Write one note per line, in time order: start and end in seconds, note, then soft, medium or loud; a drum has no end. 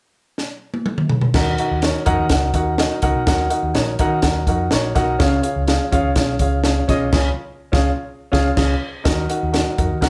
0.38 snare medium
0.74 high tom medium
0.86 mid tom medium
0.98 mid tom medium
1.09 floor tom medium
1.21 floor tom medium
1.34 1.55 D#2 medium
1.34 2.03 D#3 medium
1.34 1.52 D#4 medium
1.34 1.52 F#4 medium
1.34 1.53 A#4 medium
1.34 1.53 F#5 loud
1.34 kick loud
1.34 snare loud
1.34 crash medium
1.58 1.77 D#4 medium
1.58 1.77 F#4 medium
1.58 1.77 A#4 medium
1.58 1.77 F#5 medium
1.58 closed hi-hat medium
1.71 1.91 D#2 medium
1.82 2.01 D#4 medium
1.82 2.01 F#4 medium
1.82 2.01 A#4 medium
1.82 2.01 C#5 medium
1.82 snare loud
1.82 closed hi-hat medium
2.06 2.17 F2 medium
2.06 2.24 D#4 loud
2.06 2.24 F#4 medium
2.06 2.24 A#4 medium
2.06 2.25 F#5 loud
2.06 kick medium
2.06 closed hi-hat medium
2.19 2.29 D#2 medium
2.29 2.50 C#2 medium
2.29 2.49 D#4 medium
2.29 2.49 F#4 medium
2.29 2.49 A#4 medium
2.29 2.50 F#5 medium
2.29 kick medium
2.29 snare loud
2.29 closed hi-hat medium
2.54 2.85 D#2 medium
2.54 2.72 D#4 medium
2.54 2.73 F#4 medium
2.54 2.73 A#4 medium
2.54 2.73 F#5 medium
2.54 kick medium
2.54 closed hi-hat medium
2.78 2.97 D#4 medium
2.78 2.97 F#4 medium
2.78 2.97 A#4 medium
2.78 2.97 D#5 medium
2.78 snare loud
2.78 closed hi-hat medium
3.02 3.13 C#2 loud
3.02 3.21 D#4 medium
3.02 3.21 F#4 medium
3.02 3.21 A#4 medium
3.02 3.21 F#5 loud
3.02 kick medium
3.02 closed hi-hat medium
3.15 3.25 B1 medium
3.26 3.47 D#2 loud
3.26 3.95 D#3 medium
3.26 3.45 D#4 medium
3.26 3.45 F#4 medium
3.26 3.45 A#4 medium
3.26 3.46 F#5 loud
3.26 kick loud
3.26 snare loud
3.26 closed hi-hat medium
3.50 3.69 D#4 medium
3.50 3.69 F#4 medium
3.50 3.69 A#4 medium
3.50 3.69 F#5 medium
3.50 closed hi-hat medium
3.63 3.73 D#2 medium
3.74 3.95 A#1 medium
3.74 3.93 D#4 medium
3.74 3.93 F#4 medium
3.74 3.93 A#4 medium
3.74 3.93 C#5 medium
3.74 snare loud
3.74 closed hi-hat medium
3.99 4.20 D#3 medium
3.99 4.17 D#4 loud
3.99 4.18 F#4 medium
3.99 4.18 A#4 medium
3.99 4.18 F#5 loud
3.99 kick medium
3.99 closed hi-hat medium
4.22 4.44 D#2 medium
4.22 4.42 D#4 medium
4.22 4.42 F#4 medium
4.22 4.42 A#4 medium
4.22 4.42 F#5 medium
4.22 kick medium
4.22 snare loud
4.22 closed hi-hat medium
4.47 4.67 F2 medium
4.47 4.66 D#4 medium
4.47 4.66 F#4 medium
4.47 4.66 A#4 medium
4.47 4.66 F#5 medium
4.47 kick medium
4.47 closed hi-hat medium
4.71 4.92 A#1 medium
4.71 4.90 D#4 medium
4.71 4.90 F#4 medium
4.71 4.90 A#4 medium
4.71 4.91 C#5 medium
4.71 snare loud
4.71 closed hi-hat medium
4.95 5.16 B1 medium
4.95 5.13 D#4 loud
4.95 5.14 F#4 medium
4.95 5.14 A#4 medium
4.95 5.14 F#5 loud
4.95 kick medium
4.95 snare soft
4.95 closed hi-hat medium
5.19 5.40 C#2 medium
5.19 5.88 C#3 medium
5.19 5.38 C#4 loud
5.19 5.38 F4 medium
5.19 5.38 G#4 medium
5.19 5.38 F5 loud
5.19 kick loud
5.19 snare loud
5.19 closed hi-hat medium
5.42 5.61 C#4 medium
5.42 5.61 F4 medium
5.42 5.62 G#4 medium
5.42 5.62 F5 medium
5.42 closed hi-hat medium
5.56 5.76 C#2 medium
5.67 5.86 C#4 medium
5.67 5.86 F4 medium
5.67 5.86 G#4 medium
5.67 5.86 F5 medium
5.67 snare loud
5.67 closed hi-hat medium
5.92 6.03 D#2 medium
5.92 6.10 C#4 loud
5.92 6.10 F4 medium
5.92 6.11 G#4 medium
5.92 6.11 F5 loud
5.92 kick medium
5.92 closed hi-hat medium
6.05 6.14 C#2 medium
6.16 6.36 B1 medium
6.16 6.34 C#4 medium
6.16 6.35 F4 medium
6.16 6.35 G#4 medium
6.16 6.35 F5 medium
6.16 kick medium
6.16 snare loud
6.16 closed hi-hat medium
6.39 6.81 C#2 medium
6.39 6.58 C#4 medium
6.39 6.59 F4 medium
6.39 6.59 G#4 medium
6.39 6.59 F5 medium
6.39 kick medium
6.39 closed hi-hat medium
6.64 6.83 C#4 medium
6.64 6.83 F4 medium
6.64 6.83 G#4 medium
6.64 6.83 F5 medium
6.64 snare loud
6.64 closed hi-hat medium
6.88 7.09 B1 medium
6.88 7.07 C#4 medium
6.88 7.07 F4 medium
6.88 7.07 G#4 medium
6.88 7.07 D#5 loud
6.88 kick medium
6.88 snare soft
6.88 closed hi-hat medium
7.12 7.29 C#2 loud
7.12 7.29 C#3 medium
7.12 7.29 C#4 medium
7.12 7.29 F4 medium
7.12 7.29 G#4 medium
7.12 7.30 G#5 medium
7.12 kick loud
7.12 snare loud
7.12 crash medium
7.72 7.90 C#2 loud
7.72 7.89 C#4 medium
7.72 7.89 F4 medium
7.72 7.90 G#4 medium
7.72 7.90 F5 medium
7.72 kick loud
7.72 snare medium
8.32 8.50 C#2 loud
8.32 8.49 C#4 loud
8.32 8.49 F4 loud
8.32 8.50 G#4 loud
8.32 8.49 F5 medium
8.32 kick medium
8.32 snare medium
8.56 8.74 C#2 loud
8.56 8.73 C#4 medium
8.56 8.74 F4 medium
8.56 8.74 G#4 medium
8.56 8.74 C#5 medium
8.56 8.74 F5 medium
8.56 kick loud
8.56 snare medium
8.56 crash medium
9.04 9.26 D#2 medium
9.04 9.74 D#3 medium
9.04 9.23 D#4 medium
9.04 9.24 F#4 medium
9.04 9.24 A#4 medium
9.04 9.24 F#5 medium
9.04 kick loud
9.04 snare loud
9.04 closed hi-hat medium
9.29 9.48 D#4 medium
9.29 9.48 F#4 medium
9.29 9.48 A#4 medium
9.29 9.49 F#5 medium
9.29 closed hi-hat medium
9.43 9.63 D#2 medium
9.52 9.72 D#4 medium
9.52 9.72 F#4 medium
9.52 9.72 A#4 medium
9.52 9.72 F#5 medium
9.52 snare loud
9.52 closed hi-hat medium
9.78 9.89 F2 medium
9.78 9.96 D#4 medium
9.78 9.96 F#4 medium
9.78 9.97 A#4 medium
9.78 9.97 F#5 medium
9.78 kick medium
9.78 closed hi-hat medium
9.91 10.01 D#2 medium
10.01 10.09 C#2 medium
10.01 10.09 D#4 medium
10.01 10.09 F#4 medium
10.01 10.09 A#4 medium
10.01 10.09 F#5 loud
10.01 kick medium
10.01 snare loud
10.01 closed hi-hat medium